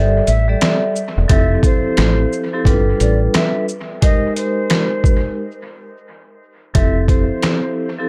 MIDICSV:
0, 0, Header, 1, 5, 480
1, 0, Start_track
1, 0, Tempo, 681818
1, 912, Time_signature, 4, 2, 24, 8
1, 5694, End_track
2, 0, Start_track
2, 0, Title_t, "Flute"
2, 0, Program_c, 0, 73
2, 192, Note_on_c, 0, 76, 94
2, 328, Note_off_c, 0, 76, 0
2, 915, Note_on_c, 0, 76, 108
2, 1129, Note_off_c, 0, 76, 0
2, 1163, Note_on_c, 0, 72, 84
2, 1849, Note_off_c, 0, 72, 0
2, 2121, Note_on_c, 0, 74, 75
2, 2252, Note_off_c, 0, 74, 0
2, 2359, Note_on_c, 0, 76, 83
2, 2572, Note_off_c, 0, 76, 0
2, 2839, Note_on_c, 0, 75, 109
2, 3052, Note_off_c, 0, 75, 0
2, 3077, Note_on_c, 0, 72, 93
2, 3766, Note_off_c, 0, 72, 0
2, 4749, Note_on_c, 0, 76, 103
2, 4967, Note_off_c, 0, 76, 0
2, 4984, Note_on_c, 0, 72, 74
2, 5680, Note_off_c, 0, 72, 0
2, 5694, End_track
3, 0, Start_track
3, 0, Title_t, "Vibraphone"
3, 0, Program_c, 1, 11
3, 0, Note_on_c, 1, 55, 101
3, 0, Note_on_c, 1, 67, 82
3, 0, Note_on_c, 1, 69, 90
3, 0, Note_on_c, 1, 74, 87
3, 0, Note_on_c, 1, 76, 114
3, 173, Note_off_c, 1, 55, 0
3, 174, Note_off_c, 1, 67, 0
3, 175, Note_off_c, 1, 69, 0
3, 176, Note_off_c, 1, 74, 0
3, 178, Note_off_c, 1, 76, 0
3, 339, Note_on_c, 1, 55, 97
3, 341, Note_on_c, 1, 67, 84
3, 344, Note_on_c, 1, 69, 87
3, 346, Note_on_c, 1, 74, 86
3, 348, Note_on_c, 1, 76, 107
3, 649, Note_off_c, 1, 55, 0
3, 650, Note_off_c, 1, 67, 0
3, 651, Note_off_c, 1, 69, 0
3, 652, Note_off_c, 1, 74, 0
3, 653, Note_off_c, 1, 76, 0
3, 903, Note_on_c, 1, 53, 101
3, 905, Note_on_c, 1, 60, 91
3, 906, Note_on_c, 1, 64, 87
3, 909, Note_on_c, 1, 67, 84
3, 912, Note_on_c, 1, 69, 111
3, 1694, Note_off_c, 1, 53, 0
3, 1694, Note_off_c, 1, 60, 0
3, 1695, Note_off_c, 1, 64, 0
3, 1697, Note_off_c, 1, 67, 0
3, 1698, Note_off_c, 1, 69, 0
3, 1782, Note_on_c, 1, 53, 100
3, 1785, Note_on_c, 1, 60, 89
3, 1786, Note_on_c, 1, 64, 90
3, 1789, Note_on_c, 1, 67, 89
3, 1791, Note_on_c, 1, 69, 101
3, 1874, Note_off_c, 1, 69, 0
3, 1876, Note_on_c, 1, 55, 96
3, 1878, Note_on_c, 1, 62, 91
3, 1880, Note_on_c, 1, 65, 88
3, 1882, Note_on_c, 1, 69, 92
3, 1885, Note_on_c, 1, 71, 110
3, 1898, Note_off_c, 1, 53, 0
3, 1899, Note_off_c, 1, 60, 0
3, 1900, Note_off_c, 1, 64, 0
3, 1901, Note_off_c, 1, 67, 0
3, 2551, Note_off_c, 1, 55, 0
3, 2552, Note_off_c, 1, 62, 0
3, 2553, Note_off_c, 1, 65, 0
3, 2554, Note_off_c, 1, 69, 0
3, 2556, Note_off_c, 1, 71, 0
3, 2826, Note_on_c, 1, 56, 96
3, 2828, Note_on_c, 1, 63, 88
3, 2830, Note_on_c, 1, 67, 96
3, 2832, Note_on_c, 1, 70, 89
3, 2834, Note_on_c, 1, 72, 97
3, 3789, Note_off_c, 1, 56, 0
3, 3790, Note_off_c, 1, 63, 0
3, 3791, Note_off_c, 1, 67, 0
3, 3792, Note_off_c, 1, 70, 0
3, 3793, Note_off_c, 1, 72, 0
3, 4744, Note_on_c, 1, 53, 97
3, 4746, Note_on_c, 1, 60, 87
3, 4749, Note_on_c, 1, 64, 83
3, 4751, Note_on_c, 1, 67, 80
3, 4753, Note_on_c, 1, 69, 102
3, 5534, Note_off_c, 1, 53, 0
3, 5535, Note_off_c, 1, 60, 0
3, 5537, Note_off_c, 1, 64, 0
3, 5538, Note_off_c, 1, 67, 0
3, 5539, Note_off_c, 1, 69, 0
3, 5623, Note_on_c, 1, 53, 99
3, 5626, Note_on_c, 1, 60, 85
3, 5628, Note_on_c, 1, 64, 84
3, 5630, Note_on_c, 1, 67, 86
3, 5632, Note_on_c, 1, 69, 101
3, 5694, Note_off_c, 1, 53, 0
3, 5694, Note_off_c, 1, 60, 0
3, 5694, Note_off_c, 1, 64, 0
3, 5694, Note_off_c, 1, 67, 0
3, 5694, Note_off_c, 1, 69, 0
3, 5694, End_track
4, 0, Start_track
4, 0, Title_t, "Fingered electric bass"
4, 0, Program_c, 2, 33
4, 0, Note_on_c, 2, 31, 107
4, 143, Note_off_c, 2, 31, 0
4, 197, Note_on_c, 2, 33, 98
4, 383, Note_off_c, 2, 33, 0
4, 828, Note_on_c, 2, 28, 92
4, 896, Note_off_c, 2, 28, 0
4, 915, Note_on_c, 2, 29, 114
4, 1102, Note_off_c, 2, 29, 0
4, 1397, Note_on_c, 2, 33, 104
4, 1583, Note_off_c, 2, 33, 0
4, 1869, Note_on_c, 2, 31, 110
4, 2058, Note_off_c, 2, 31, 0
4, 2118, Note_on_c, 2, 33, 83
4, 2303, Note_off_c, 2, 33, 0
4, 4755, Note_on_c, 2, 29, 104
4, 5129, Note_off_c, 2, 29, 0
4, 5694, End_track
5, 0, Start_track
5, 0, Title_t, "Drums"
5, 192, Note_on_c, 9, 42, 51
5, 192, Note_on_c, 9, 82, 53
5, 263, Note_off_c, 9, 42, 0
5, 263, Note_off_c, 9, 82, 0
5, 432, Note_on_c, 9, 42, 88
5, 435, Note_on_c, 9, 37, 103
5, 438, Note_on_c, 9, 38, 127
5, 502, Note_off_c, 9, 42, 0
5, 505, Note_off_c, 9, 37, 0
5, 508, Note_off_c, 9, 38, 0
5, 674, Note_on_c, 9, 82, 48
5, 744, Note_off_c, 9, 82, 0
5, 911, Note_on_c, 9, 42, 97
5, 912, Note_on_c, 9, 36, 114
5, 982, Note_off_c, 9, 42, 0
5, 983, Note_off_c, 9, 36, 0
5, 1147, Note_on_c, 9, 36, 105
5, 1152, Note_on_c, 9, 42, 54
5, 1152, Note_on_c, 9, 82, 57
5, 1218, Note_off_c, 9, 36, 0
5, 1222, Note_off_c, 9, 42, 0
5, 1222, Note_off_c, 9, 82, 0
5, 1388, Note_on_c, 9, 42, 79
5, 1392, Note_on_c, 9, 37, 97
5, 1394, Note_on_c, 9, 38, 124
5, 1458, Note_off_c, 9, 42, 0
5, 1462, Note_off_c, 9, 37, 0
5, 1465, Note_off_c, 9, 38, 0
5, 1637, Note_on_c, 9, 82, 51
5, 1707, Note_off_c, 9, 82, 0
5, 1867, Note_on_c, 9, 36, 99
5, 1876, Note_on_c, 9, 42, 87
5, 1938, Note_off_c, 9, 36, 0
5, 1946, Note_off_c, 9, 42, 0
5, 2113, Note_on_c, 9, 42, 54
5, 2113, Note_on_c, 9, 82, 53
5, 2184, Note_off_c, 9, 42, 0
5, 2184, Note_off_c, 9, 82, 0
5, 2352, Note_on_c, 9, 42, 88
5, 2355, Note_on_c, 9, 37, 103
5, 2358, Note_on_c, 9, 38, 127
5, 2422, Note_off_c, 9, 42, 0
5, 2425, Note_off_c, 9, 37, 0
5, 2428, Note_off_c, 9, 38, 0
5, 2594, Note_on_c, 9, 82, 49
5, 2664, Note_off_c, 9, 82, 0
5, 2832, Note_on_c, 9, 42, 96
5, 2833, Note_on_c, 9, 36, 111
5, 2902, Note_off_c, 9, 42, 0
5, 2903, Note_off_c, 9, 36, 0
5, 3073, Note_on_c, 9, 42, 56
5, 3073, Note_on_c, 9, 82, 57
5, 3143, Note_off_c, 9, 42, 0
5, 3143, Note_off_c, 9, 82, 0
5, 3308, Note_on_c, 9, 42, 82
5, 3312, Note_on_c, 9, 37, 92
5, 3314, Note_on_c, 9, 38, 115
5, 3378, Note_off_c, 9, 42, 0
5, 3382, Note_off_c, 9, 37, 0
5, 3385, Note_off_c, 9, 38, 0
5, 3547, Note_on_c, 9, 36, 98
5, 3556, Note_on_c, 9, 82, 49
5, 3618, Note_off_c, 9, 36, 0
5, 3627, Note_off_c, 9, 82, 0
5, 4751, Note_on_c, 9, 42, 90
5, 4752, Note_on_c, 9, 36, 109
5, 4822, Note_off_c, 9, 42, 0
5, 4823, Note_off_c, 9, 36, 0
5, 4987, Note_on_c, 9, 36, 101
5, 4991, Note_on_c, 9, 42, 54
5, 5057, Note_off_c, 9, 36, 0
5, 5061, Note_off_c, 9, 42, 0
5, 5227, Note_on_c, 9, 42, 75
5, 5231, Note_on_c, 9, 37, 92
5, 5234, Note_on_c, 9, 38, 114
5, 5298, Note_off_c, 9, 42, 0
5, 5302, Note_off_c, 9, 37, 0
5, 5304, Note_off_c, 9, 38, 0
5, 5694, End_track
0, 0, End_of_file